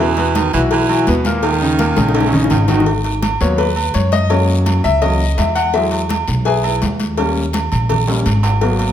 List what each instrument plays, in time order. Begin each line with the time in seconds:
Already playing: upright bass E2
0.00 grand piano B2 B3 B4, baritone saxophone E3, low agogo, long guiro
0.17 grand piano B2 B3 B4, cowbell, high conga, low agogo
0.35 baritone saxophone D#3, cowbell, high conga, low agogo, short guiro
0.53 upright bass B1, baritone saxophone E3, grand piano E3 E4 F#4, high conga, short guiro
0.71 baritone saxophone E3, cowbell, high conga, low agogo, long guiro
0.89 grand piano E3 E4 F#4, high conga, low agogo
1.07 upright bass D#2, grand piano B2 B3 B4, cowbell, high conga, short guiro
1.25 grand piano A#2 A#3 A#4, cowbell, high conga, short guiro
1.43 baritone saxophone D#3, cowbell, high conga, low agogo, long guiro
1.61 grand piano C#3 C#4 D#4, high conga
1.79 grand piano A#2 A#3 A#4, cowbell, high conga, low agogo, short guiro
1.96 upright bass A#1, grand piano C#3 C#4 D#4, high bongo, high conga, low agogo, short guiro
2.09 high bongo
2.14 baritone saxophone C#3, cowbell, high timbale, low agogo, long guiro
2.20 low bongo
2.27 high timbale
2.33 grand piano C#3 C#4 D#4, low conga
2.44 low bongo
2.50 upright bass G#1, baritone saxophone D#3, cowbell, low conga, low timbale, low agogo, short guiro
2.68 baritone saxophone D#3, grand piano D#3 D#4 F#4, cowbell, low bongo, low conga, low agogo, short guiro
2.75 low timbale
2.80 low bongo
2.86 cowbell, high conga, low agogo, long guiro
3.04 cowbell, high conga, low agogo
3.22 cowbell, high conga, low agogo, short guiro
3.40 upright bass D#2, grand piano F#3 A#3 B3 C#5, high conga, short guiro
3.58 grand piano B4, cowbell, high conga, low agogo, long guiro
3.76 high conga, low agogo
3.94 upright bass F#2, grand piano C#5, cowbell, high conga, short guiro
4.12 grand piano D#5, cowbell, high conga, short guiro
4.30 grand piano F#3 A#3 C#4 C#5, cowbell, high conga, low agogo, long guiro
4.48 high conga
4.66 cowbell, high conga, low agogo, short guiro
4.84 upright bass C#2, grand piano E5, high conga, low agogo, short guiro
5.02 grand piano F#3 A#3 C#4 D#5, cowbell, high conga, low conga, low agogo, long guiro
5.20 high conga
5.38 upright bass E2, grand piano E5, cowbell, high conga, low timbale, low agogo, short guiro
5.55 grand piano F#5, cowbell, high conga, low agogo, short guiro
5.74 grand piano F#3 G#3 E4 E5, cowbell, high conga, low agogo, long guiro
5.91 cowbell, high conga, low agogo
6.09 cowbell, high conga, low agogo, short guiro
6.28 upright bass B1, high conga, short guiro
6.45 grand piano G#4 B4 E5 G#5, cowbell, high conga, low agogo, long guiro
6.64 grand piano E4 G#4 B4 E5, high conga, low agogo
6.82 upright bass D#2, cowbell, high conga, low timbale, short guiro
6.99 cowbell, high conga, short guiro
7.17 grand piano G3 A#3 C#4, cowbell, high conga, low agogo, long guiro
7.36 high conga
7.53 cowbell, high conga, low agogo, short guiro
7.72 upright bass A#1, high conga, low agogo, short guiro
7.89 cowbell, high conga, low conga, low agogo, long guiro
8.07 grand piano G3 A#3 C#4, high conga, high timbale
8.26 upright bass G#1, cowbell, high conga, low agogo, short guiro
8.43 cowbell, low timbale, low agogo, short guiro
8.61 grand piano F#3 A#3 B3, cowbell, high conga, low agogo, long guiro
8.79 cowbell, high conga, low agogo